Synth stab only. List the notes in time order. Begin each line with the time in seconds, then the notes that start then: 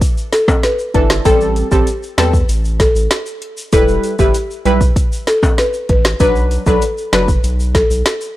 0.94 E3 D4 A4
1.25 G3 C4 A4
1.71 G3 C4 A4
2.18 G3 C4 A4
3.72 G3 E4 B4
4.19 G3 E4 B4
4.65 G3 E4 B4
6.20 F#3 D4 B4
6.66 F#3 D4 B4
7.13 F#3 D4 B4